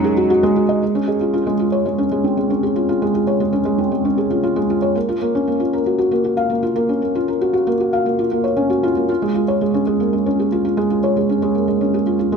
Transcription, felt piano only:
Already playing: G#3 C#4 D#4 F#4 G#4 D#5
0.04 G#4
0.17 F#4
0.30 F#4
0.43 G#3
0.56 F#4
0.69 D#5
0.82 G#3
0.95 C#4
1.08 G#4
1.21 F4
1.33 F4
1.47 G#3
1.59 F4
1.72 C#5
1.86 G#3
1.98 C#4
2.11 G#3
2.24 C4
2.37 G#3
2.50 C#4
2.63 G#4
2.76 F4
2.89 F4
3.02 G#3
3.14 F4
3.27 C#5
3.40 G#3
3.52 C#4
3.65 G#3
3.78 C4
3.91 G#3
4.05 C#4
4.17 G#4
4.30 F4
4.43 F4
4.56 G#3
4.70 F4
4.82 C#5
4.95 A#3
5.09 F4
5.21 A#3
5.35 C#4
5.47 A#3
5.60 F4
5.73 A#4
5.86 F#4
5.98 F#4
6.11 A#3
6.24 F#4
6.37 F5
6.50 A#3
6.63 F4
6.76 A#3
6.89 C#4
7.02 A#3
7.15 F4
7.28 A#4
7.41 F#4
7.53 F#4
7.67 A#3
7.80 F#4
7.93 F5
8.06 A#3
8.19 F4
8.31 A#3
8.44 C#5
8.57 C#4
8.70 F#4
8.83 F4
8.97 A#3
9.09 F4
9.22 G#3
9.35 F4
9.48 C#5
9.61 G#3
9.74 C#4
9.87 G#3
10.00 A#3
10.13 G#3
10.26 C#4
10.39 G#4
10.52 F4
10.65 F4
10.77 G#3
10.90 F4
11.04 C#5
11.17 G#3
11.29 C#4
11.42 G#3
11.55 A#3
11.68 G#3
11.81 C#4
11.94 G#4
12.06 F4
12.19 F4
12.32 G#3

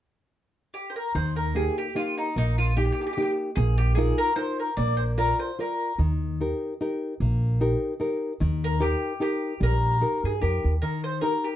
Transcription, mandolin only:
0.74 G4
0.90 C5
0.96 A#4
1.15 C5
1.36 A#4
1.56 G#4
1.78 G4
1.96 F4
2.18 D#4
2.38 D#4
2.58 F4
2.77 G4
2.84 G4
2.92 G4
3.01 G4
3.07 G4
3.13 G4
3.22 G4
3.56 G#4
3.78 G4
3.95 G#4
4.18 A#4
4.36 C5
4.60 A#4
4.77 D5
4.97 C5
5.18 A#4
5.40 C5
5.60 A#4
8.64 A#4
8.82 G4
9.22 G4
9.63 A#4
10.25 G#4
10.41 G4
10.82 A#4
11.04 C5
11.21 A#4
11.44 G4

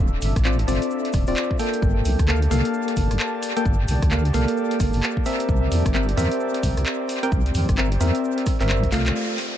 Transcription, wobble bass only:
0.00 D1
0.22 G1
0.36 A1
0.68 G1
1.14 D1
1.28 D1
1.82 G1
2.05 C2
2.19 D2
2.51 C2
2.97 G1
3.11 G1
3.66 G1
3.89 C2
4.02 D2
4.34 C2
4.80 G1
4.94 G1
5.49 C2
5.72 E2
5.86 G1
6.17 E2
6.63 C2
6.77 C2
7.32 C2
7.55 E2
7.69 G1
8.01 E2
8.61 G1
8.92 C2

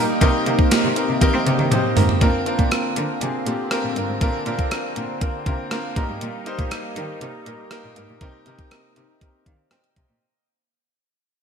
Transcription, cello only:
0.21 C3
0.46 C3
0.84 C3
1.09 C3
1.34 C4
1.46 C3
1.59 D#3
1.71 C3
1.96 G#2
2.21 A#2
2.59 A#2
2.96 D3
3.21 C3
3.46 A#2
3.84 A#2
3.96 G2
4.09 G#2
4.21 A#2
4.46 A#2
4.96 A#2
5.46 C3
5.71 A#3
5.96 A#2
6.09 G#2
6.21 A#2
6.59 A#2
6.96 D#3
7.21 C3
7.46 A#2
7.84 A#2
7.97 G#2
8.09 A#2
8.21 C3
8.46 C3
8.97 C3
9.46 D#3
9.71 C4
9.96 C3
10.09 A#2

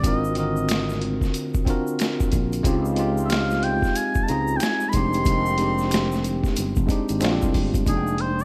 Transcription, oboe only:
0.06 D#5
0.38 D#5
3.25 E5
3.31 F5
3.64 G5
3.97 G#5
4.23 A5
4.29 A#5
4.57 G5
4.63 G#5
4.89 B5
4.94 C6
7.88 G#4
8.21 C5

